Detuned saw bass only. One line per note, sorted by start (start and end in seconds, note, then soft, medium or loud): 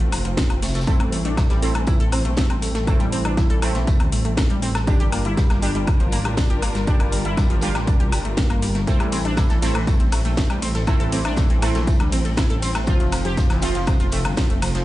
0.00 0.10 A1 medium
0.12 0.23 F1 loud
0.25 0.35 F1 loud
0.50 0.60 F1 medium
0.62 0.73 F1 loud
0.75 0.85 F1 loud
1.00 1.10 A1 medium
1.12 1.23 A1 loud
1.25 1.35 A1 medium
1.50 1.60 A1 medium
1.62 1.73 A1 medium
1.75 1.85 A1 medium
2.00 2.10 A1 medium
2.12 2.23 A1 loud
2.25 2.35 A#1 medium
2.50 2.60 A1 medium
2.62 2.73 A1 loud
2.75 2.85 A1 medium
3.00 3.10 A1 medium
3.12 3.23 A1 loud
3.25 3.35 A1 medium
3.50 3.60 A1 medium
3.62 3.73 A1 loud
3.75 3.85 A#1 medium
4.00 4.10 D2 medium
4.12 4.23 A1 loud
4.25 4.35 A1 loud
4.50 4.60 A1 medium
4.62 4.73 A1 loud
4.75 4.85 A1 loud
5.00 5.10 G1 medium
5.12 5.23 G1 loud
5.25 5.35 G1 medium
5.50 5.60 G1 medium
5.62 5.73 G1 loud
5.75 5.85 G1 medium
6.00 6.10 G1 medium
6.12 6.23 G1 loud
6.25 6.35 A1 loud
6.50 6.60 G1 medium
6.62 6.73 G1 loud
6.75 6.85 G1 loud
7.00 7.10 G1 medium
7.12 7.23 G1 loud
7.25 7.35 G1 medium
7.50 7.60 G1 medium
7.62 7.73 G1 loud
7.75 7.85 A1 medium
8.00 8.10 C2 medium
8.12 8.23 G1 loud
8.25 8.35 G1 medium
8.50 8.60 G1 medium
8.62 8.73 G1 loud
8.75 8.85 G1 medium
9.00 9.10 A1 medium
9.12 9.23 A1 loud
9.25 9.35 A1 medium
9.50 9.60 A1 medium
9.62 9.73 A1 medium
9.75 9.85 A1 medium
10.00 10.10 A1 medium
10.12 10.23 A1 loud
10.25 10.35 A#1 loud
10.50 10.60 A1 medium
10.62 10.73 A1 loud
10.75 10.85 A1 medium
11.00 11.10 A1 medium
11.12 11.23 A1 loud
11.25 11.35 A1 medium
11.50 11.60 A1 medium
11.62 11.73 A1 loud
11.75 11.85 A#1 loud
12.00 12.10 D2 medium
12.12 12.23 A1 loud
12.25 12.35 A1 medium
12.50 12.60 A1 medium
12.62 12.73 A1 loud
12.75 12.85 A1 medium
13.00 13.10 F1 medium
13.12 13.23 F1 medium
13.25 13.35 F1 medium
13.50 13.60 F1 medium
13.62 13.73 F1 loud
13.75 13.85 F1 medium
14.00 14.10 F1 medium
14.12 14.23 F1 loud
14.25 14.35 G1 medium
14.50 14.60 F1 medium
14.62 14.73 F1 loud
14.75 14.85 F1 medium